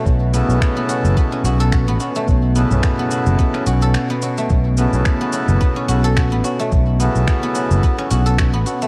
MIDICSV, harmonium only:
0, 0, Header, 1, 2, 480
1, 0, Start_track
1, 0, Tempo, 555556
1, 48, Time_signature, 4, 2, 24, 8
1, 7669, End_track
2, 0, Start_track
2, 0, Title_t, "Harmonium"
2, 0, Program_c, 0, 20
2, 272, Note_on_c, 0, 49, 109
2, 280, Note_on_c, 0, 54, 108
2, 289, Note_on_c, 0, 59, 104
2, 296, Note_on_c, 0, 64, 105
2, 306, Note_on_c, 0, 69, 119
2, 1215, Note_off_c, 0, 49, 0
2, 1219, Note_off_c, 0, 54, 0
2, 1223, Note_off_c, 0, 59, 0
2, 1227, Note_off_c, 0, 64, 0
2, 1232, Note_off_c, 0, 69, 0
2, 1243, Note_on_c, 0, 49, 83
2, 1245, Note_on_c, 0, 54, 79
2, 1249, Note_on_c, 0, 59, 80
2, 1255, Note_on_c, 0, 64, 79
2, 1259, Note_on_c, 0, 69, 99
2, 1363, Note_off_c, 0, 49, 0
2, 1365, Note_off_c, 0, 54, 0
2, 1367, Note_off_c, 0, 59, 0
2, 1369, Note_off_c, 0, 64, 0
2, 1372, Note_off_c, 0, 69, 0
2, 2194, Note_on_c, 0, 49, 114
2, 2203, Note_on_c, 0, 54, 101
2, 2211, Note_on_c, 0, 59, 98
2, 2221, Note_on_c, 0, 64, 96
2, 2227, Note_on_c, 0, 69, 124
2, 3136, Note_off_c, 0, 49, 0
2, 3140, Note_off_c, 0, 54, 0
2, 3145, Note_off_c, 0, 59, 0
2, 3150, Note_off_c, 0, 64, 0
2, 3152, Note_off_c, 0, 69, 0
2, 4112, Note_on_c, 0, 49, 107
2, 4123, Note_on_c, 0, 54, 98
2, 4129, Note_on_c, 0, 59, 99
2, 4138, Note_on_c, 0, 64, 97
2, 4147, Note_on_c, 0, 69, 118
2, 5055, Note_off_c, 0, 49, 0
2, 5060, Note_off_c, 0, 54, 0
2, 5063, Note_off_c, 0, 59, 0
2, 5068, Note_off_c, 0, 64, 0
2, 5072, Note_off_c, 0, 69, 0
2, 5082, Note_on_c, 0, 49, 89
2, 5088, Note_on_c, 0, 54, 82
2, 5089, Note_on_c, 0, 59, 78
2, 5095, Note_on_c, 0, 64, 82
2, 5101, Note_on_c, 0, 69, 97
2, 5203, Note_off_c, 0, 49, 0
2, 5206, Note_off_c, 0, 54, 0
2, 5207, Note_off_c, 0, 59, 0
2, 5210, Note_off_c, 0, 64, 0
2, 5212, Note_off_c, 0, 69, 0
2, 6034, Note_on_c, 0, 49, 107
2, 6043, Note_on_c, 0, 54, 96
2, 6052, Note_on_c, 0, 59, 106
2, 6061, Note_on_c, 0, 64, 100
2, 6069, Note_on_c, 0, 69, 117
2, 6976, Note_off_c, 0, 49, 0
2, 6980, Note_off_c, 0, 54, 0
2, 6985, Note_off_c, 0, 59, 0
2, 6989, Note_off_c, 0, 64, 0
2, 6993, Note_off_c, 0, 69, 0
2, 6999, Note_on_c, 0, 49, 93
2, 7005, Note_on_c, 0, 54, 75
2, 7007, Note_on_c, 0, 59, 81
2, 7012, Note_on_c, 0, 64, 75
2, 7016, Note_on_c, 0, 69, 99
2, 7122, Note_off_c, 0, 49, 0
2, 7124, Note_off_c, 0, 54, 0
2, 7125, Note_off_c, 0, 59, 0
2, 7128, Note_off_c, 0, 64, 0
2, 7130, Note_off_c, 0, 69, 0
2, 7669, End_track
0, 0, End_of_file